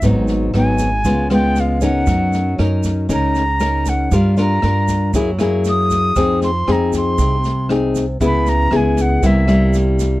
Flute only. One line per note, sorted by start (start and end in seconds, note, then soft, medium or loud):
0.57 1.28 G#5 loud
1.33 1.62 G5 medium
1.60 1.84 F5 medium
1.84 2.56 F#5 medium
3.13 3.91 A#5 medium
3.89 4.17 F#5 medium
4.15 4.39 F5 medium
4.41 5.12 A#5 medium
5.69 6.40 D#6 loud
6.44 6.73 C6 loud
6.72 6.95 A#5 medium
6.97 7.68 C6 medium
8.26 8.50 B5 medium
8.49 8.78 A#5 loud
8.76 9.03 G#5 medium
9.02 9.28 F#5 medium
9.26 9.76 E5 medium